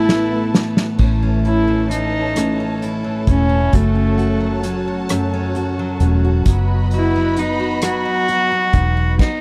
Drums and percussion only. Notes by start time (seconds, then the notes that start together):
0.09 snare
0.55 snare
0.77 snare
0.98 kick, crash
1.45 closed hi-hat
1.91 closed hi-hat
2.36 cross-stick, closed hi-hat
2.82 closed hi-hat
3.27 kick, closed hi-hat
3.73 kick, closed hi-hat
4.19 closed hi-hat
4.63 cross-stick, closed hi-hat
5.09 cross-stick, closed hi-hat
5.55 closed hi-hat
6.00 closed hi-hat
6.46 kick, closed hi-hat
6.91 closed hi-hat
7.36 cross-stick, closed hi-hat
7.82 cross-stick, closed hi-hat
8.28 closed hi-hat
8.73 kick, closed hi-hat
9.19 kick, snare, crash